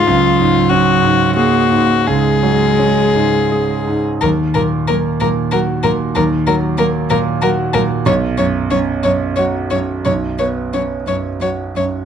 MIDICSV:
0, 0, Header, 1, 4, 480
1, 0, Start_track
1, 0, Key_signature, -6, "minor"
1, 0, Tempo, 650054
1, 45, Time_signature, 3, 2, 24, 8
1, 1007, Tempo, 712589
1, 2927, Tempo, 642398
1, 6287, Tempo, 677966
1, 8651, End_track
2, 0, Start_track
2, 0, Title_t, "Violin"
2, 0, Program_c, 0, 40
2, 0, Note_on_c, 0, 65, 76
2, 510, Note_on_c, 0, 66, 67
2, 521, Note_off_c, 0, 65, 0
2, 1002, Note_off_c, 0, 66, 0
2, 1007, Note_on_c, 0, 66, 67
2, 1480, Note_on_c, 0, 68, 64
2, 1490, Note_off_c, 0, 66, 0
2, 2784, Note_off_c, 0, 68, 0
2, 2926, Note_on_c, 0, 70, 60
2, 2985, Note_off_c, 0, 70, 0
2, 3172, Note_on_c, 0, 70, 51
2, 3232, Note_off_c, 0, 70, 0
2, 3422, Note_on_c, 0, 70, 54
2, 3481, Note_off_c, 0, 70, 0
2, 3665, Note_on_c, 0, 70, 52
2, 3725, Note_off_c, 0, 70, 0
2, 3898, Note_on_c, 0, 70, 58
2, 3958, Note_off_c, 0, 70, 0
2, 4137, Note_on_c, 0, 70, 58
2, 4197, Note_off_c, 0, 70, 0
2, 4376, Note_on_c, 0, 70, 62
2, 4436, Note_off_c, 0, 70, 0
2, 4611, Note_on_c, 0, 70, 60
2, 4671, Note_off_c, 0, 70, 0
2, 4845, Note_on_c, 0, 70, 58
2, 4905, Note_off_c, 0, 70, 0
2, 5084, Note_on_c, 0, 70, 59
2, 5144, Note_off_c, 0, 70, 0
2, 5322, Note_on_c, 0, 70, 66
2, 5382, Note_off_c, 0, 70, 0
2, 5557, Note_on_c, 0, 70, 71
2, 5617, Note_off_c, 0, 70, 0
2, 5801, Note_on_c, 0, 73, 66
2, 5861, Note_off_c, 0, 73, 0
2, 6038, Note_on_c, 0, 73, 59
2, 6098, Note_off_c, 0, 73, 0
2, 6283, Note_on_c, 0, 73, 54
2, 6340, Note_off_c, 0, 73, 0
2, 6516, Note_on_c, 0, 73, 54
2, 6573, Note_off_c, 0, 73, 0
2, 6748, Note_on_c, 0, 73, 53
2, 6804, Note_off_c, 0, 73, 0
2, 6990, Note_on_c, 0, 73, 48
2, 7047, Note_off_c, 0, 73, 0
2, 7235, Note_on_c, 0, 73, 46
2, 7291, Note_off_c, 0, 73, 0
2, 7475, Note_on_c, 0, 73, 37
2, 7531, Note_off_c, 0, 73, 0
2, 7721, Note_on_c, 0, 73, 38
2, 7777, Note_off_c, 0, 73, 0
2, 7962, Note_on_c, 0, 73, 38
2, 8018, Note_off_c, 0, 73, 0
2, 8202, Note_on_c, 0, 73, 39
2, 8259, Note_off_c, 0, 73, 0
2, 8449, Note_on_c, 0, 73, 36
2, 8506, Note_off_c, 0, 73, 0
2, 8651, End_track
3, 0, Start_track
3, 0, Title_t, "Cello"
3, 0, Program_c, 1, 42
3, 49, Note_on_c, 1, 54, 82
3, 1005, Note_on_c, 1, 58, 65
3, 1015, Note_off_c, 1, 54, 0
3, 1490, Note_on_c, 1, 56, 65
3, 1500, Note_off_c, 1, 58, 0
3, 2789, Note_off_c, 1, 56, 0
3, 2938, Note_on_c, 1, 54, 58
3, 2997, Note_off_c, 1, 54, 0
3, 3187, Note_on_c, 1, 54, 50
3, 3247, Note_off_c, 1, 54, 0
3, 3434, Note_on_c, 1, 54, 58
3, 3494, Note_off_c, 1, 54, 0
3, 3675, Note_on_c, 1, 54, 52
3, 3734, Note_off_c, 1, 54, 0
3, 3909, Note_on_c, 1, 54, 58
3, 3969, Note_off_c, 1, 54, 0
3, 4141, Note_on_c, 1, 54, 54
3, 4201, Note_off_c, 1, 54, 0
3, 4374, Note_on_c, 1, 54, 60
3, 4434, Note_off_c, 1, 54, 0
3, 4615, Note_on_c, 1, 54, 63
3, 4675, Note_off_c, 1, 54, 0
3, 4841, Note_on_c, 1, 54, 69
3, 4901, Note_off_c, 1, 54, 0
3, 5080, Note_on_c, 1, 54, 58
3, 5140, Note_off_c, 1, 54, 0
3, 5318, Note_on_c, 1, 54, 67
3, 5378, Note_off_c, 1, 54, 0
3, 5566, Note_on_c, 1, 54, 62
3, 5626, Note_off_c, 1, 54, 0
3, 5799, Note_on_c, 1, 54, 67
3, 5858, Note_off_c, 1, 54, 0
3, 6037, Note_on_c, 1, 54, 58
3, 6097, Note_off_c, 1, 54, 0
3, 6286, Note_on_c, 1, 54, 69
3, 6342, Note_off_c, 1, 54, 0
3, 6518, Note_on_c, 1, 54, 55
3, 6574, Note_off_c, 1, 54, 0
3, 6750, Note_on_c, 1, 54, 54
3, 6806, Note_off_c, 1, 54, 0
3, 6992, Note_on_c, 1, 54, 49
3, 7049, Note_off_c, 1, 54, 0
3, 7238, Note_on_c, 1, 54, 47
3, 7295, Note_off_c, 1, 54, 0
3, 7469, Note_on_c, 1, 54, 39
3, 7526, Note_off_c, 1, 54, 0
3, 7718, Note_on_c, 1, 54, 40
3, 7775, Note_off_c, 1, 54, 0
3, 7953, Note_on_c, 1, 54, 37
3, 8010, Note_off_c, 1, 54, 0
3, 8192, Note_on_c, 1, 54, 40
3, 8249, Note_off_c, 1, 54, 0
3, 8441, Note_on_c, 1, 54, 35
3, 8498, Note_off_c, 1, 54, 0
3, 8651, End_track
4, 0, Start_track
4, 0, Title_t, "Grand piano"
4, 0, Program_c, 2, 0
4, 0, Control_c, 2, 64, 127
4, 52, Note_on_c, 2, 37, 84
4, 59, Control_c, 2, 64, 0
4, 167, Control_c, 2, 64, 127
4, 286, Note_on_c, 2, 44, 61
4, 521, Note_on_c, 2, 61, 58
4, 662, Note_off_c, 2, 44, 0
4, 756, Note_on_c, 2, 44, 60
4, 909, Note_off_c, 2, 61, 0
4, 1008, Note_on_c, 2, 68, 56
4, 1147, Note_off_c, 2, 44, 0
4, 1240, Note_on_c, 2, 44, 49
4, 1388, Note_off_c, 2, 68, 0
4, 1461, Note_off_c, 2, 37, 0
4, 1484, Note_on_c, 2, 37, 65
4, 1499, Control_c, 2, 64, 0
4, 1613, Control_c, 2, 64, 127
4, 1630, Note_off_c, 2, 44, 0
4, 1725, Note_on_c, 2, 54, 48
4, 1969, Note_on_c, 2, 61, 51
4, 2111, Note_off_c, 2, 54, 0
4, 2207, Note_on_c, 2, 44, 48
4, 2352, Note_off_c, 2, 61, 0
4, 2457, Note_on_c, 2, 68, 51
4, 2593, Note_off_c, 2, 44, 0
4, 2696, Note_on_c, 2, 44, 44
4, 2839, Note_off_c, 2, 68, 0
4, 2900, Note_off_c, 2, 37, 0
4, 2929, Note_off_c, 2, 44, 0
4, 2933, Note_on_c, 2, 39, 66
4, 2941, Control_c, 2, 64, 0
4, 3073, Control_c, 2, 64, 127
4, 3182, Note_on_c, 2, 46, 49
4, 3430, Note_on_c, 2, 58, 50
4, 3573, Note_off_c, 2, 46, 0
4, 3675, Note_on_c, 2, 46, 49
4, 3813, Note_off_c, 2, 58, 0
4, 3910, Note_on_c, 2, 66, 57
4, 4050, Note_off_c, 2, 46, 0
4, 4145, Note_on_c, 2, 46, 46
4, 4285, Note_off_c, 2, 66, 0
4, 4350, Note_off_c, 2, 39, 0
4, 4381, Note_on_c, 2, 39, 74
4, 4390, Control_c, 2, 64, 0
4, 4489, Control_c, 2, 64, 127
4, 4522, Note_off_c, 2, 46, 0
4, 4616, Note_on_c, 2, 54, 58
4, 4857, Note_on_c, 2, 58, 55
4, 4995, Note_off_c, 2, 54, 0
4, 5093, Note_on_c, 2, 46, 64
4, 5233, Note_off_c, 2, 58, 0
4, 5331, Note_on_c, 2, 66, 68
4, 5471, Note_off_c, 2, 46, 0
4, 5567, Note_on_c, 2, 46, 59
4, 5711, Note_off_c, 2, 66, 0
4, 5776, Note_off_c, 2, 39, 0
4, 5802, Note_on_c, 2, 35, 79
4, 5805, Note_off_c, 2, 46, 0
4, 5818, Control_c, 2, 64, 0
4, 5922, Control_c, 2, 64, 127
4, 6041, Note_on_c, 2, 42, 58
4, 6289, Note_on_c, 2, 61, 53
4, 6426, Note_off_c, 2, 42, 0
4, 6526, Note_on_c, 2, 42, 56
4, 6663, Note_off_c, 2, 61, 0
4, 6764, Note_on_c, 2, 66, 49
4, 6903, Note_off_c, 2, 42, 0
4, 6998, Note_on_c, 2, 42, 40
4, 7144, Note_off_c, 2, 66, 0
4, 7208, Note_off_c, 2, 35, 0
4, 7241, Note_on_c, 2, 35, 53
4, 7249, Control_c, 2, 64, 0
4, 7351, Control_c, 2, 64, 127
4, 7382, Note_off_c, 2, 42, 0
4, 7481, Note_on_c, 2, 59, 39
4, 7721, Note_on_c, 2, 61, 37
4, 7866, Note_off_c, 2, 59, 0
4, 7961, Note_on_c, 2, 42, 38
4, 8106, Note_off_c, 2, 61, 0
4, 8205, Note_on_c, 2, 66, 35
4, 8348, Note_off_c, 2, 42, 0
4, 8449, Note_on_c, 2, 42, 31
4, 8593, Note_off_c, 2, 66, 0
4, 8651, Note_off_c, 2, 35, 0
4, 8651, Note_off_c, 2, 42, 0
4, 8651, End_track
0, 0, End_of_file